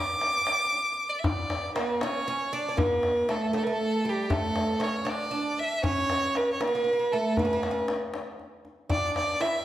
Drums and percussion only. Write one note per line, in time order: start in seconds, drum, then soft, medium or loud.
0.21 tombak tek medium
0.47 tombak tek medium
0.72 tombak ka soft
1.24 tombak dum medium
1.50 tombak tek medium
1.76 tombak tek medium
2.01 tombak tek medium
2.27 tombak ka soft
2.52 tombak ka soft
2.78 tombak dum loud
3.03 tombak tek medium
3.29 tombak tek medium
3.54 tombak tek medium
3.81 tombak ka soft
4.05 tombak ka soft
4.30 tombak dum medium
4.56 tombak tek medium
4.81 tombak tek medium
5.07 tombak tek medium
5.33 tombak ka soft
5.58 tombak ka soft
5.84 tombak dum medium
6.10 tombak tek medium
6.35 tombak tek medium
6.61 tombak tek medium
6.87 tombak ka soft
7.12 tombak ka soft
7.37 tombak dum medium
7.63 tombak tek medium
7.88 tombak tek medium
8.14 tombak tek medium
8.39 tombak ka soft
8.65 tombak ka soft
8.90 tombak dum medium
9.16 tombak tek medium
9.41 tombak tek medium